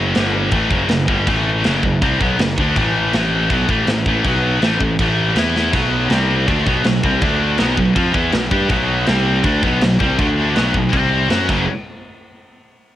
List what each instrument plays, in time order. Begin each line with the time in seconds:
Already playing: picked electric bass F#1, distorted electric guitar F#2 C#3 F#3
0.15 picked electric bass G1, distorted electric guitar G2 D3 G3, snare, crash
0.51 picked electric bass A1, distorted electric guitar A2 E3 A3, kick, crash
0.70 picked electric bass F#1, distorted electric guitar F#2 C#3 F#3, kick
0.89 picked electric bass F#1, distorted electric guitar F#2 C#3, snare, crash
1.08 picked electric bass G1, distorted electric guitar G2 D3 G3, kick
1.27 picked electric bass A1, distorted electric guitar A2 E3 A3, kick, crash
1.64 picked electric bass F#1, distorted electric guitar F#2 C#3 F#3, snare, crash
1.83 picked electric bass F#1, distorted electric guitar F#2 C#3, kick
2.01 picked electric bass C2, distorted electric guitar C3 G3 C4, kick, crash
2.20 picked electric bass B1, distorted electric guitar B2 F#3 B3, kick
2.38 picked electric bass F#1, distorted electric guitar F#2 C#3, snare, crash
2.58 picked electric bass D2, distorted electric guitar D3 A3 D4, kick
2.76 picked electric bass A1, distorted electric guitar A2 E3 A3, kick, crash
3.13 picked electric bass A1, distorted electric guitar A2 E3 A3, snare, crash
3.50 picked electric bass B1, distorted electric guitar B2 F#3 B3, kick, crash
3.69 picked electric bass A1, distorted electric guitar A2 E3 A3, kick
3.87 picked electric bass A1, distorted electric guitar A2 E3, snare, crash
4.06 picked electric bass A1, distorted electric guitar A2 E3 A3, kick
4.24 picked electric bass B1, distorted electric guitar B2 F#3, kick, crash
4.28 distorted electric guitar B3
4.61 picked electric bass A1, distorted electric guitar A2 E3 A3, snare, crash
4.80 picked electric bass A1, distorted electric guitar A2 E3, kick
4.99 picked electric bass A1, distorted electric guitar A2 E3 A3, kick, crash
5.36 picked electric bass E2, distorted electric guitar E3 B3 E4, snare, crash
5.56 snare
5.73 picked electric bass B1, distorted electric guitar B2 F#3 B3, kick, splash, crash
6.10 picked electric bass C2, distorted electric guitar C3 G3 C4, snare, crash
6.48 picked electric bass D2, distorted electric guitar D3 A3 D4, kick, crash
6.66 picked electric bass B1, distorted electric guitar B2 F#3 B3, kick
6.84 picked electric bass B1, distorted electric guitar B2 F#3, snare, crash
7.03 picked electric bass C2, distorted electric guitar C3 G3 C4, kick
7.21 picked electric bass D2, distorted electric guitar D3 A3 D4, kick, crash
7.58 picked electric bass B1, distorted electric guitar B2 F#3 B3, snare, crash
7.77 picked electric bass B1, distorted electric guitar B2 F#3, kick
7.95 picked electric bass F2, distorted electric guitar F3 C4 F4, kick, crash
8.14 picked electric bass E2, distorted electric guitar E3 B3 E4, kick
8.32 picked electric bass B1, distorted electric guitar B2 F#3, snare, crash
8.51 picked electric bass G2, distorted electric guitar G3 D4 G4, kick
8.69 picked electric bass B1, distorted electric guitar B2 F#3 B3, kick, crash
9.06 picked electric bass C2, distorted electric guitar C3 G3 C4, snare, crash
9.43 picked electric bass D2, distorted electric guitar D3 A3 D4, kick, crash
9.63 picked electric bass B1, distorted electric guitar B2 F#3 B3, kick
9.81 picked electric bass B1, distorted electric guitar B2 F#3, snare, crash
9.99 picked electric bass C2, distorted electric guitar C3 G3 C4, kick
10.18 picked electric bass D2, distorted electric guitar D3 A3 D4, kick, crash
10.55 picked electric bass B1, distorted electric guitar B2 F#3 B3, snare, crash
10.74 picked electric bass B1, distorted electric guitar B2 F#3, kick
10.91 picked electric bass C2, distorted electric guitar C3 G3 C4, kick, crash
11.29 picked electric bass F#2, distorted electric guitar F#3 C#4 F#4, snare, crash
11.48 picked electric bass F#1, distorted electric guitar F#2 C#3 F#3, kick, crash